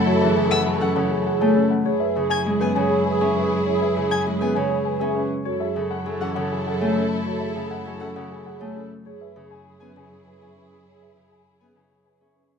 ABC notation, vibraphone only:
X:1
M:3/4
L:1/16
Q:1/4=100
K:Emix
V:1 name="Vibraphone"
F G z3 C A z G c C z | G B z3 C c z B e C z | G B z3 C c z B e C z | F G z3 C z2 G c C z |
F G z3 C z2 G c C z | G B z3 C z2 B e C z | G B z3 C z2 B e C z |]